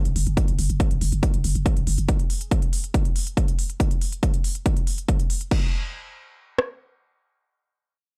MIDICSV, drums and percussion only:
0, 0, Header, 1, 2, 480
1, 0, Start_track
1, 0, Tempo, 428571
1, 414, Time_signature, 4, 2, 24, 8
1, 9157, End_track
2, 0, Start_track
2, 0, Title_t, "Drums"
2, 59, Note_on_c, 9, 42, 50
2, 171, Note_off_c, 9, 42, 0
2, 178, Note_on_c, 9, 46, 105
2, 290, Note_off_c, 9, 46, 0
2, 298, Note_on_c, 9, 42, 48
2, 410, Note_off_c, 9, 42, 0
2, 415, Note_on_c, 9, 36, 112
2, 416, Note_on_c, 9, 42, 71
2, 527, Note_off_c, 9, 36, 0
2, 528, Note_off_c, 9, 42, 0
2, 538, Note_on_c, 9, 42, 48
2, 650, Note_off_c, 9, 42, 0
2, 656, Note_on_c, 9, 46, 98
2, 768, Note_off_c, 9, 46, 0
2, 779, Note_on_c, 9, 42, 50
2, 891, Note_off_c, 9, 42, 0
2, 895, Note_on_c, 9, 36, 110
2, 896, Note_on_c, 9, 42, 75
2, 1007, Note_off_c, 9, 36, 0
2, 1008, Note_off_c, 9, 42, 0
2, 1018, Note_on_c, 9, 42, 51
2, 1130, Note_off_c, 9, 42, 0
2, 1135, Note_on_c, 9, 46, 98
2, 1247, Note_off_c, 9, 46, 0
2, 1257, Note_on_c, 9, 42, 49
2, 1369, Note_off_c, 9, 42, 0
2, 1376, Note_on_c, 9, 36, 111
2, 1376, Note_on_c, 9, 42, 73
2, 1488, Note_off_c, 9, 36, 0
2, 1488, Note_off_c, 9, 42, 0
2, 1498, Note_on_c, 9, 42, 50
2, 1610, Note_off_c, 9, 42, 0
2, 1615, Note_on_c, 9, 46, 102
2, 1727, Note_off_c, 9, 46, 0
2, 1738, Note_on_c, 9, 42, 49
2, 1850, Note_off_c, 9, 42, 0
2, 1856, Note_on_c, 9, 36, 111
2, 1856, Note_on_c, 9, 42, 73
2, 1968, Note_off_c, 9, 36, 0
2, 1968, Note_off_c, 9, 42, 0
2, 1978, Note_on_c, 9, 42, 50
2, 2090, Note_off_c, 9, 42, 0
2, 2094, Note_on_c, 9, 46, 101
2, 2206, Note_off_c, 9, 46, 0
2, 2217, Note_on_c, 9, 42, 49
2, 2329, Note_off_c, 9, 42, 0
2, 2335, Note_on_c, 9, 42, 75
2, 2336, Note_on_c, 9, 36, 103
2, 2447, Note_off_c, 9, 42, 0
2, 2448, Note_off_c, 9, 36, 0
2, 2457, Note_on_c, 9, 42, 48
2, 2569, Note_off_c, 9, 42, 0
2, 2575, Note_on_c, 9, 46, 98
2, 2687, Note_off_c, 9, 46, 0
2, 2698, Note_on_c, 9, 42, 52
2, 2810, Note_off_c, 9, 42, 0
2, 2816, Note_on_c, 9, 36, 105
2, 2816, Note_on_c, 9, 42, 74
2, 2928, Note_off_c, 9, 36, 0
2, 2928, Note_off_c, 9, 42, 0
2, 2937, Note_on_c, 9, 42, 53
2, 3049, Note_off_c, 9, 42, 0
2, 3056, Note_on_c, 9, 46, 95
2, 3168, Note_off_c, 9, 46, 0
2, 3179, Note_on_c, 9, 42, 50
2, 3291, Note_off_c, 9, 42, 0
2, 3296, Note_on_c, 9, 36, 112
2, 3296, Note_on_c, 9, 42, 76
2, 3408, Note_off_c, 9, 36, 0
2, 3408, Note_off_c, 9, 42, 0
2, 3418, Note_on_c, 9, 42, 49
2, 3530, Note_off_c, 9, 42, 0
2, 3536, Note_on_c, 9, 46, 101
2, 3648, Note_off_c, 9, 46, 0
2, 3659, Note_on_c, 9, 42, 49
2, 3771, Note_off_c, 9, 42, 0
2, 3776, Note_on_c, 9, 36, 107
2, 3777, Note_on_c, 9, 42, 75
2, 3888, Note_off_c, 9, 36, 0
2, 3889, Note_off_c, 9, 42, 0
2, 3900, Note_on_c, 9, 42, 51
2, 4012, Note_off_c, 9, 42, 0
2, 4017, Note_on_c, 9, 46, 97
2, 4129, Note_off_c, 9, 46, 0
2, 4140, Note_on_c, 9, 42, 49
2, 4252, Note_off_c, 9, 42, 0
2, 4256, Note_on_c, 9, 36, 105
2, 4257, Note_on_c, 9, 42, 75
2, 4368, Note_off_c, 9, 36, 0
2, 4369, Note_off_c, 9, 42, 0
2, 4379, Note_on_c, 9, 42, 50
2, 4491, Note_off_c, 9, 42, 0
2, 4496, Note_on_c, 9, 46, 98
2, 4608, Note_off_c, 9, 46, 0
2, 4619, Note_on_c, 9, 42, 51
2, 4731, Note_off_c, 9, 42, 0
2, 4736, Note_on_c, 9, 36, 105
2, 4736, Note_on_c, 9, 42, 78
2, 4848, Note_off_c, 9, 36, 0
2, 4848, Note_off_c, 9, 42, 0
2, 4857, Note_on_c, 9, 42, 53
2, 4969, Note_off_c, 9, 42, 0
2, 4976, Note_on_c, 9, 46, 96
2, 5088, Note_off_c, 9, 46, 0
2, 5097, Note_on_c, 9, 42, 52
2, 5209, Note_off_c, 9, 42, 0
2, 5215, Note_on_c, 9, 42, 78
2, 5216, Note_on_c, 9, 36, 111
2, 5327, Note_off_c, 9, 42, 0
2, 5328, Note_off_c, 9, 36, 0
2, 5338, Note_on_c, 9, 42, 52
2, 5450, Note_off_c, 9, 42, 0
2, 5455, Note_on_c, 9, 46, 101
2, 5567, Note_off_c, 9, 46, 0
2, 5578, Note_on_c, 9, 42, 49
2, 5690, Note_off_c, 9, 42, 0
2, 5695, Note_on_c, 9, 36, 113
2, 5695, Note_on_c, 9, 42, 79
2, 5807, Note_off_c, 9, 36, 0
2, 5807, Note_off_c, 9, 42, 0
2, 5818, Note_on_c, 9, 42, 54
2, 5930, Note_off_c, 9, 42, 0
2, 5936, Note_on_c, 9, 46, 101
2, 6048, Note_off_c, 9, 46, 0
2, 6058, Note_on_c, 9, 42, 51
2, 6170, Note_off_c, 9, 42, 0
2, 6175, Note_on_c, 9, 36, 107
2, 6175, Note_on_c, 9, 49, 79
2, 6287, Note_off_c, 9, 36, 0
2, 6287, Note_off_c, 9, 49, 0
2, 7375, Note_on_c, 9, 37, 58
2, 7487, Note_off_c, 9, 37, 0
2, 9157, End_track
0, 0, End_of_file